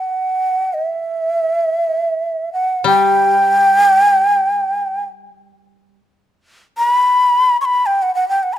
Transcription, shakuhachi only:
Already playing: F#5
0.74 D#5
0.85 E5
2.53 F#5
2.87 G5
6.78 B5
7.61 B5 C#6
7.86 G5
8.02 F#5
8.15 F#5
8.29 G5
8.43 F#5
8.53 B5

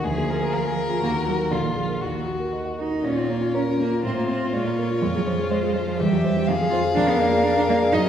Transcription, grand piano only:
0.04 D2
0.17 A#3
0.29 G#4
0.41 A#4
0.53 F5
0.65 G#5
0.77 A#4
0.90 F4
1.02 D#2
1.14 A#3
1.27 F#4
1.39 A#4
1.51 A#1
1.63 A#3
1.76 G#4
1.89 A#4
2.01 D#2
2.14 A#3
2.27 F#4
2.40 A#4
2.53 D#5
2.65 F#5
2.78 A#4
2.91 D#4
3.03 A#2
3.15 F4
3.28 C#4
3.41 F4
3.54 C#5
3.66 F4
3.79 C#4
3.91 F4
4.04 A2
4.16 F4
4.27 C4
4.40 F4
4.53 A#2
4.65 F4
4.78 A#4
4.91 F4
5.02 F2
5.15 G#4
5.27 C5
5.39 G#4
5.51 C5
5.64 G#4
5.76 C5
5.88 G#4
6.00 E2
6.13 G4
6.24 C5
6.37 G4
6.49 F2
6.61 G#4
6.73 C5
6.85 G#4
6.97 F2
7.09 G#4
7.21 D5
7.33 G#4
7.46 A#4
7.57 G#4
7.71 D5
7.82 G#4
7.94 F#2

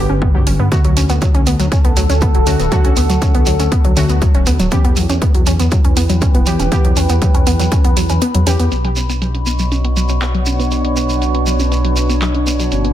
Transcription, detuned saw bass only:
0.10 G1
0.35 G2
0.47 G1
0.60 G2
0.85 D2
0.97 D2
1.10 D2
1.35 D2
1.47 D2
1.60 D2
1.85 D2
1.97 D2
2.10 D2
2.35 D1
2.47 D2
2.60 D1
2.85 D2
2.97 D2
3.10 D2
3.35 D2
3.47 D2
3.60 D2
3.85 D2
3.97 D2
4.10 D2
4.35 D1
4.47 D2
4.60 D1
4.85 E2
4.97 E2
5.10 E2
5.35 E2
5.47 E2
5.60 E2
5.85 E2
5.97 E2
6.10 E2
6.35 E1
6.47 E2
6.60 E1
6.85 E2
6.97 E2
7.10 E2
7.35 E2
7.47 E2
7.60 E2
7.85 E2
7.97 E2
8.10 E2
8.35 E2
8.47 E2
8.60 E2
8.72 B1
12.72 G1

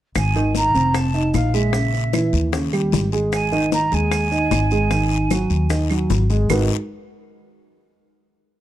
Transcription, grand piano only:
0.36 D#3 D#4
0.75 C4 C5
1.14 D#4 D#5
1.54 G#3 G#4
1.73 C#3 C#4
2.14 E3 E4
2.53 C#3 C#4
2.73 G3 G4
3.13 G#3 G#4
3.52 D#3 D#4
3.92 G#3 G#4
4.31 D#4 D#5
4.72 G#3 G#4
4.91 D#3 D#4
5.31 F#3 F#4
5.70 D#3 D#4
5.91 F#3 F#4
6.30 G#3 G#4
6.50 G#3 D#4 F#4 G#4 A#4 B4

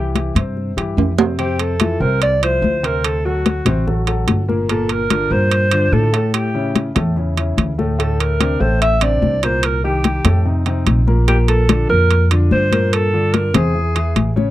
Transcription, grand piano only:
Already playing: E3 E4 G4
0.16 E3 E4 G4
0.36 C3 C4 C5
0.77 E3 E4 G4
1.18 C3 C4 C5
1.38 C3 C4 C5
1.80 E3 E4 F4
2.00 C3 C4 C5
2.42 F3 E4 F4
2.83 C3 C4 C5
3.25 F#3 F#4 A4
3.67 C3 C4 C5
3.87 F#3 F#4 A4
4.07 F#3 F#4 A4
4.48 A#2 A#3 A#4
4.69 A#2 A#3 A#4
5.11 D3 D4 F4
5.31 A#2 A#3 A#4
5.72 D3 D4 F4
6.13 A2 A3 A4
6.54 C#3 C#4 E4
6.95 A2 A3 A4
7.16 C#3 C#4 E4
7.37 C#3 C#4 E4
7.79 A2 A3 A4
7.99 A2 A3 A4
8.40 C3 C4 D4
8.60 A2 A3 A4
9.01 C3 C4 D4
9.43 A#2 A#3 A#4
9.84 D#3 D#4 G4
10.25 A2 A3 A4
10.45 C3 C4 D#4
10.66 C3 C4 D#4
11.07 A#2 A#3 A#4
11.28 A#2 A#3 A#4
11.69 D3 D4 F4
11.90 A#2 A#3 A#4
12.31 D3 D4 F4
12.72 A#2 A#3 A#4
13.14 D3 D4 F4
13.54 C3 C4 C5
13.75 E3 E4 G#4
13.95 E3 E4 G#4
14.36 C#3 C#4 C#5

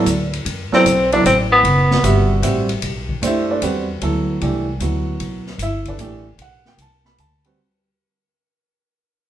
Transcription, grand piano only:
0.72 F#3 B3 E4 A4 D5
1.13 F#3 B3 E4 A4 D5
2.04 C3 G3 F#4 B4 E5
2.43 G3 C4 F#4 B4 E5
3.22 A3 D4 G4 C5
3.27 E4 E5
3.50 D4 A4 B4 D5
3.63 G3 C4 F#4 B4
4.02 F#3 B3 E4 A4
4.42 E3 A3 D4 G4
4.81 F#3 B3 E4 F#4
5.62 E4 E5
5.88 D4 A4 B4 D5
6.00 E3 A3 D4 G4
6.42 F#5
6.68 G5
6.82 A5
7.06 B5
7.20 A5
7.45 G3 C4 F#4 B4

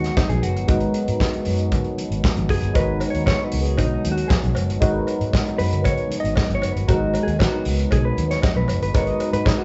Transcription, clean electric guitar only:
Already playing: F#4
0.17 D#4
0.29 G#4
0.43 F#4
2.50 G#4
2.76 B4
3.10 C#5
3.26 C#5
3.44 B4
3.61 G#4
3.78 D#4
4.12 F#4
4.28 G#4
5.58 B4
5.85 C#5
6.20 D#5
6.37 D#5
6.55 C#5
6.72 B4
6.89 F#4
7.23 G#4
7.40 F#4
7.92 G#4
8.05 B4
8.31 C#5
8.43 D#5
8.57 B4
8.83 B4
8.95 C#5
9.07 D#5
9.33 B4
9.46 G#4
9.58 F#4

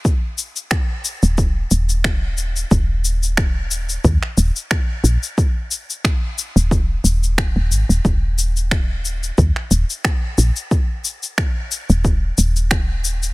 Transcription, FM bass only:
1.23 D#1
1.71 D#1
2.71 D#1
4.04 D#2
4.38 D#1
5.04 A#1
6.56 D#1
7.04 D#1
7.56 D#1
7.71 G#1
7.89 D#1
8.05 D#1
9.38 D#2
9.71 D#1
10.38 A#1
11.90 D#1
12.38 D#1

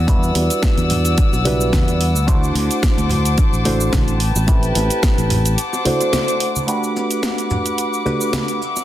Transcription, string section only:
Already playing: D5 F#5 E6
2.29 C5 A5 D6
4.21 B4 G5
5.58 C5 F#5 D6
6.68 B4 F#5 D6
8.61 G3 E5 F#5

